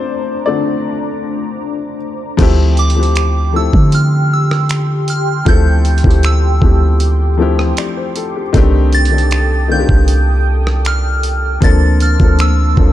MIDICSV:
0, 0, Header, 1, 6, 480
1, 0, Start_track
1, 0, Key_signature, -1, "minor"
1, 0, Tempo, 769231
1, 1490, Time_signature, 4, 2, 24, 8
1, 8068, End_track
2, 0, Start_track
2, 0, Title_t, "Synth bell"
2, 0, Program_c, 0, 98
2, 1741, Note_on_c, 0, 86, 86
2, 2223, Note_on_c, 0, 88, 86
2, 2230, Note_off_c, 0, 86, 0
2, 2462, Note_on_c, 0, 89, 104
2, 2464, Note_off_c, 0, 88, 0
2, 2703, Note_off_c, 0, 89, 0
2, 2704, Note_on_c, 0, 88, 90
2, 3181, Note_on_c, 0, 89, 94
2, 3191, Note_off_c, 0, 88, 0
2, 3422, Note_on_c, 0, 91, 111
2, 3423, Note_off_c, 0, 89, 0
2, 3902, Note_on_c, 0, 88, 89
2, 3910, Note_off_c, 0, 91, 0
2, 4591, Note_off_c, 0, 88, 0
2, 5582, Note_on_c, 0, 93, 110
2, 6062, Note_on_c, 0, 91, 94
2, 6070, Note_off_c, 0, 93, 0
2, 6511, Note_off_c, 0, 91, 0
2, 6784, Note_on_c, 0, 89, 101
2, 7264, Note_on_c, 0, 93, 116
2, 7271, Note_off_c, 0, 89, 0
2, 7502, Note_on_c, 0, 89, 101
2, 7504, Note_off_c, 0, 93, 0
2, 7743, Note_off_c, 0, 89, 0
2, 7744, Note_on_c, 0, 88, 97
2, 8068, Note_off_c, 0, 88, 0
2, 8068, End_track
3, 0, Start_track
3, 0, Title_t, "Analog synth pad"
3, 0, Program_c, 1, 89
3, 0, Note_on_c, 1, 57, 74
3, 0, Note_on_c, 1, 62, 78
3, 0, Note_on_c, 1, 72, 70
3, 0, Note_on_c, 1, 82, 73
3, 0, Note_on_c, 1, 86, 87
3, 1465, Note_off_c, 1, 57, 0
3, 1465, Note_off_c, 1, 86, 0
3, 1471, Note_off_c, 1, 72, 0
3, 1471, Note_off_c, 1, 82, 0
3, 1472, Note_off_c, 1, 62, 0
3, 1490, Note_on_c, 1, 67, 79
3, 1490, Note_on_c, 1, 84, 75
3, 1491, Note_on_c, 1, 79, 71
3, 3408, Note_on_c, 1, 86, 87
3, 5305, Note_off_c, 1, 67, 0
3, 5305, Note_off_c, 1, 79, 0
3, 5305, Note_off_c, 1, 84, 0
3, 5330, Note_on_c, 1, 69, 80
3, 5330, Note_on_c, 1, 79, 75
3, 5330, Note_on_c, 1, 87, 86
3, 7224, Note_off_c, 1, 86, 0
3, 7230, Note_off_c, 1, 79, 0
3, 7231, Note_off_c, 1, 69, 0
3, 7231, Note_off_c, 1, 87, 0
3, 7250, Note_on_c, 1, 84, 76
3, 7250, Note_on_c, 1, 86, 91
3, 7251, Note_on_c, 1, 58, 82
3, 7251, Note_on_c, 1, 81, 70
3, 8068, Note_off_c, 1, 58, 0
3, 8068, Note_off_c, 1, 81, 0
3, 8068, Note_off_c, 1, 84, 0
3, 8068, Note_off_c, 1, 86, 0
3, 8068, End_track
4, 0, Start_track
4, 0, Title_t, "Grand piano"
4, 0, Program_c, 2, 0
4, 0, Control_c, 2, 64, 127
4, 0, Note_on_c, 2, 60, 70
4, 0, Note_on_c, 2, 62, 81
4, 0, Note_on_c, 2, 72, 107
4, 0, Note_on_c, 2, 74, 98
4, 270, Note_off_c, 2, 60, 0
4, 285, Note_off_c, 2, 74, 0
4, 285, Note_on_c, 2, 74, 91
4, 291, Note_on_c, 2, 50, 52
4, 295, Note_on_c, 2, 57, 51
4, 299, Note_on_c, 2, 60, 61
4, 300, Note_off_c, 2, 62, 0
4, 300, Note_on_c, 2, 62, 70
4, 302, Note_off_c, 2, 72, 0
4, 1223, Note_off_c, 2, 74, 0
4, 1230, Note_off_c, 2, 62, 0
4, 1465, Note_off_c, 2, 50, 0
4, 1467, Note_off_c, 2, 57, 0
4, 1469, Note_off_c, 2, 60, 0
4, 1480, Note_on_c, 2, 53, 108
4, 1487, Note_on_c, 2, 57, 97
4, 1495, Note_on_c, 2, 60, 102
4, 1498, Control_c, 2, 64, 0
4, 1503, Note_on_c, 2, 64, 100
4, 1510, Note_on_c, 2, 67, 119
4, 1606, Control_c, 2, 64, 127
4, 1805, Note_off_c, 2, 53, 0
4, 1808, Note_off_c, 2, 57, 0
4, 1812, Note_off_c, 2, 60, 0
4, 1816, Note_off_c, 2, 64, 0
4, 1820, Note_off_c, 2, 67, 0
4, 1841, Note_on_c, 2, 53, 67
4, 1849, Note_on_c, 2, 57, 59
4, 1855, Note_on_c, 2, 60, 61
4, 1863, Note_on_c, 2, 64, 57
4, 1871, Note_on_c, 2, 67, 69
4, 2165, Note_off_c, 2, 53, 0
4, 2169, Note_off_c, 2, 57, 0
4, 2173, Note_off_c, 2, 60, 0
4, 2176, Note_off_c, 2, 64, 0
4, 2180, Note_off_c, 2, 67, 0
4, 2200, Note_on_c, 2, 53, 74
4, 2207, Note_on_c, 2, 57, 68
4, 2215, Note_on_c, 2, 60, 65
4, 2223, Note_on_c, 2, 64, 69
4, 2230, Note_on_c, 2, 69, 84
4, 3058, Note_off_c, 2, 53, 0
4, 3061, Note_off_c, 2, 57, 0
4, 3065, Note_off_c, 2, 60, 0
4, 3069, Note_off_c, 2, 64, 0
4, 3073, Note_off_c, 2, 69, 0
4, 3401, Note_on_c, 2, 53, 96
4, 3409, Note_on_c, 2, 57, 87
4, 3416, Note_on_c, 2, 60, 82
4, 3424, Note_on_c, 2, 64, 90
4, 3431, Note_on_c, 2, 69, 109
4, 3725, Note_off_c, 2, 53, 0
4, 3729, Note_off_c, 2, 57, 0
4, 3733, Note_off_c, 2, 60, 0
4, 3737, Note_off_c, 2, 64, 0
4, 3741, Note_off_c, 2, 69, 0
4, 3761, Note_on_c, 2, 53, 69
4, 3768, Note_on_c, 2, 57, 65
4, 3775, Note_on_c, 2, 60, 64
4, 3783, Note_on_c, 2, 64, 60
4, 3791, Note_on_c, 2, 67, 74
4, 4085, Note_off_c, 2, 53, 0
4, 4089, Note_off_c, 2, 57, 0
4, 4092, Note_off_c, 2, 60, 0
4, 4096, Note_off_c, 2, 64, 0
4, 4100, Note_off_c, 2, 67, 0
4, 4120, Note_on_c, 2, 53, 69
4, 4128, Note_on_c, 2, 57, 64
4, 4136, Note_on_c, 2, 60, 67
4, 4143, Note_on_c, 2, 64, 63
4, 4151, Note_on_c, 2, 67, 76
4, 4552, Note_off_c, 2, 53, 0
4, 4555, Note_off_c, 2, 57, 0
4, 4559, Note_off_c, 2, 60, 0
4, 4563, Note_off_c, 2, 64, 0
4, 4567, Note_off_c, 2, 67, 0
4, 4601, Note_on_c, 2, 53, 89
4, 4609, Note_on_c, 2, 57, 80
4, 4616, Note_on_c, 2, 60, 80
4, 4624, Note_on_c, 2, 64, 82
4, 4631, Note_on_c, 2, 67, 96
4, 4855, Note_on_c, 2, 74, 60
4, 4860, Note_off_c, 2, 67, 0
4, 4967, Note_off_c, 2, 74, 0
4, 4975, Note_on_c, 2, 72, 68
4, 5086, Note_off_c, 2, 72, 0
4, 5095, Note_on_c, 2, 69, 74
4, 5206, Note_off_c, 2, 69, 0
4, 5216, Note_on_c, 2, 67, 64
4, 5245, Note_off_c, 2, 53, 0
4, 5249, Note_off_c, 2, 57, 0
4, 5253, Note_off_c, 2, 60, 0
4, 5256, Note_off_c, 2, 64, 0
4, 5321, Note_on_c, 2, 51, 113
4, 5329, Note_on_c, 2, 57, 110
4, 5336, Note_on_c, 2, 60, 108
4, 5338, Control_c, 2, 64, 0
4, 5342, Note_off_c, 2, 67, 0
4, 5343, Note_on_c, 2, 62, 107
4, 5352, Note_on_c, 2, 67, 125
4, 5464, Control_c, 2, 64, 127
4, 5645, Note_off_c, 2, 51, 0
4, 5649, Note_off_c, 2, 57, 0
4, 5653, Note_off_c, 2, 60, 0
4, 5656, Note_off_c, 2, 62, 0
4, 5661, Note_off_c, 2, 67, 0
4, 5679, Note_on_c, 2, 51, 63
4, 5688, Note_on_c, 2, 57, 61
4, 5695, Note_on_c, 2, 60, 56
4, 5702, Note_on_c, 2, 62, 60
4, 5711, Note_on_c, 2, 69, 72
4, 6004, Note_off_c, 2, 51, 0
4, 6009, Note_off_c, 2, 57, 0
4, 6012, Note_off_c, 2, 60, 0
4, 6016, Note_off_c, 2, 62, 0
4, 6020, Note_off_c, 2, 69, 0
4, 6041, Note_on_c, 2, 51, 77
4, 6048, Note_on_c, 2, 57, 69
4, 6056, Note_on_c, 2, 60, 67
4, 6063, Note_on_c, 2, 62, 68
4, 6071, Note_on_c, 2, 65, 67
4, 6101, Note_off_c, 2, 65, 0
4, 6112, Note_on_c, 2, 67, 85
4, 6898, Note_off_c, 2, 51, 0
4, 6902, Note_off_c, 2, 57, 0
4, 6906, Note_off_c, 2, 60, 0
4, 6909, Note_off_c, 2, 62, 0
4, 6934, Note_off_c, 2, 67, 0
4, 7241, Note_on_c, 2, 53, 93
4, 7248, Note_on_c, 2, 58, 86
4, 7257, Control_c, 2, 64, 0
4, 7257, Note_on_c, 2, 60, 83
4, 7264, Note_on_c, 2, 62, 91
4, 7271, Note_on_c, 2, 69, 106
4, 7348, Control_c, 2, 64, 127
4, 7565, Note_off_c, 2, 53, 0
4, 7569, Note_off_c, 2, 58, 0
4, 7573, Note_off_c, 2, 60, 0
4, 7577, Note_off_c, 2, 62, 0
4, 7580, Note_off_c, 2, 69, 0
4, 7602, Note_on_c, 2, 53, 71
4, 7610, Note_on_c, 2, 58, 65
4, 7617, Note_on_c, 2, 60, 63
4, 7624, Note_on_c, 2, 62, 60
4, 7632, Note_on_c, 2, 69, 74
4, 7926, Note_off_c, 2, 53, 0
4, 7930, Note_off_c, 2, 58, 0
4, 7933, Note_off_c, 2, 60, 0
4, 7937, Note_off_c, 2, 62, 0
4, 7941, Note_off_c, 2, 69, 0
4, 7961, Note_on_c, 2, 53, 69
4, 7968, Note_on_c, 2, 58, 63
4, 7976, Note_on_c, 2, 60, 65
4, 7984, Note_on_c, 2, 62, 65
4, 7992, Note_on_c, 2, 69, 74
4, 8068, Note_off_c, 2, 53, 0
4, 8068, Note_off_c, 2, 58, 0
4, 8068, Note_off_c, 2, 60, 0
4, 8068, Note_off_c, 2, 62, 0
4, 8068, Note_off_c, 2, 69, 0
4, 8068, End_track
5, 0, Start_track
5, 0, Title_t, "808-style bass"
5, 0, Program_c, 3, 38
5, 1492, Note_on_c, 3, 38, 110
5, 2306, Note_off_c, 3, 38, 0
5, 2332, Note_on_c, 3, 50, 104
5, 3386, Note_off_c, 3, 50, 0
5, 3412, Note_on_c, 3, 38, 109
5, 3756, Note_off_c, 3, 38, 0
5, 3773, Note_on_c, 3, 38, 104
5, 4117, Note_off_c, 3, 38, 0
5, 4131, Note_on_c, 3, 38, 106
5, 4825, Note_off_c, 3, 38, 0
5, 5332, Note_on_c, 3, 36, 112
5, 6146, Note_off_c, 3, 36, 0
5, 6172, Note_on_c, 3, 36, 107
5, 7226, Note_off_c, 3, 36, 0
5, 7253, Note_on_c, 3, 38, 109
5, 7597, Note_off_c, 3, 38, 0
5, 7613, Note_on_c, 3, 38, 104
5, 7957, Note_off_c, 3, 38, 0
5, 7972, Note_on_c, 3, 38, 104
5, 8068, Note_off_c, 3, 38, 0
5, 8068, End_track
6, 0, Start_track
6, 0, Title_t, "Drums"
6, 1489, Note_on_c, 9, 42, 72
6, 1489, Note_on_c, 9, 49, 95
6, 1490, Note_on_c, 9, 36, 118
6, 1552, Note_off_c, 9, 36, 0
6, 1552, Note_off_c, 9, 42, 0
6, 1552, Note_off_c, 9, 49, 0
6, 1729, Note_on_c, 9, 42, 49
6, 1792, Note_off_c, 9, 42, 0
6, 1809, Note_on_c, 9, 42, 52
6, 1871, Note_off_c, 9, 42, 0
6, 1890, Note_on_c, 9, 42, 53
6, 1952, Note_off_c, 9, 42, 0
6, 1969, Note_on_c, 9, 42, 59
6, 1977, Note_on_c, 9, 26, 117
6, 2031, Note_off_c, 9, 42, 0
6, 2040, Note_off_c, 9, 26, 0
6, 2330, Note_on_c, 9, 36, 102
6, 2392, Note_off_c, 9, 36, 0
6, 2448, Note_on_c, 9, 42, 75
6, 2510, Note_off_c, 9, 42, 0
6, 2817, Note_on_c, 9, 37, 91
6, 2879, Note_off_c, 9, 37, 0
6, 2929, Note_on_c, 9, 42, 72
6, 2937, Note_on_c, 9, 26, 106
6, 2991, Note_off_c, 9, 42, 0
6, 3000, Note_off_c, 9, 26, 0
6, 3169, Note_on_c, 9, 42, 64
6, 3231, Note_off_c, 9, 42, 0
6, 3409, Note_on_c, 9, 42, 69
6, 3410, Note_on_c, 9, 36, 123
6, 3471, Note_off_c, 9, 42, 0
6, 3472, Note_off_c, 9, 36, 0
6, 3650, Note_on_c, 9, 42, 50
6, 3712, Note_off_c, 9, 42, 0
6, 3730, Note_on_c, 9, 42, 52
6, 3770, Note_on_c, 9, 36, 91
6, 3793, Note_off_c, 9, 42, 0
6, 3810, Note_on_c, 9, 42, 50
6, 3833, Note_off_c, 9, 36, 0
6, 3872, Note_off_c, 9, 42, 0
6, 3889, Note_on_c, 9, 42, 62
6, 3897, Note_on_c, 9, 26, 121
6, 3951, Note_off_c, 9, 42, 0
6, 3959, Note_off_c, 9, 26, 0
6, 4129, Note_on_c, 9, 36, 97
6, 4191, Note_off_c, 9, 36, 0
6, 4368, Note_on_c, 9, 42, 79
6, 4431, Note_off_c, 9, 42, 0
6, 4737, Note_on_c, 9, 37, 91
6, 4799, Note_off_c, 9, 37, 0
6, 4849, Note_on_c, 9, 42, 71
6, 4857, Note_on_c, 9, 26, 112
6, 4911, Note_off_c, 9, 42, 0
6, 4919, Note_off_c, 9, 26, 0
6, 5089, Note_on_c, 9, 42, 66
6, 5152, Note_off_c, 9, 42, 0
6, 5330, Note_on_c, 9, 36, 121
6, 5330, Note_on_c, 9, 42, 73
6, 5392, Note_off_c, 9, 42, 0
6, 5393, Note_off_c, 9, 36, 0
6, 5570, Note_on_c, 9, 42, 52
6, 5632, Note_off_c, 9, 42, 0
6, 5650, Note_on_c, 9, 42, 48
6, 5712, Note_off_c, 9, 42, 0
6, 5730, Note_on_c, 9, 42, 51
6, 5793, Note_off_c, 9, 42, 0
6, 5810, Note_on_c, 9, 42, 60
6, 5818, Note_on_c, 9, 26, 113
6, 5872, Note_off_c, 9, 42, 0
6, 5881, Note_off_c, 9, 26, 0
6, 6171, Note_on_c, 9, 36, 105
6, 6233, Note_off_c, 9, 36, 0
6, 6289, Note_on_c, 9, 42, 76
6, 6351, Note_off_c, 9, 42, 0
6, 6658, Note_on_c, 9, 37, 98
6, 6720, Note_off_c, 9, 37, 0
6, 6770, Note_on_c, 9, 42, 65
6, 6779, Note_on_c, 9, 26, 112
6, 6832, Note_off_c, 9, 42, 0
6, 6841, Note_off_c, 9, 26, 0
6, 7010, Note_on_c, 9, 42, 61
6, 7072, Note_off_c, 9, 42, 0
6, 7250, Note_on_c, 9, 42, 74
6, 7251, Note_on_c, 9, 36, 114
6, 7312, Note_off_c, 9, 42, 0
6, 7313, Note_off_c, 9, 36, 0
6, 7491, Note_on_c, 9, 42, 59
6, 7553, Note_off_c, 9, 42, 0
6, 7610, Note_on_c, 9, 42, 36
6, 7611, Note_on_c, 9, 36, 88
6, 7673, Note_off_c, 9, 42, 0
6, 7674, Note_off_c, 9, 36, 0
6, 7729, Note_on_c, 9, 42, 62
6, 7738, Note_on_c, 9, 26, 112
6, 7792, Note_off_c, 9, 42, 0
6, 7800, Note_off_c, 9, 26, 0
6, 7970, Note_on_c, 9, 36, 98
6, 8032, Note_off_c, 9, 36, 0
6, 8068, End_track
0, 0, End_of_file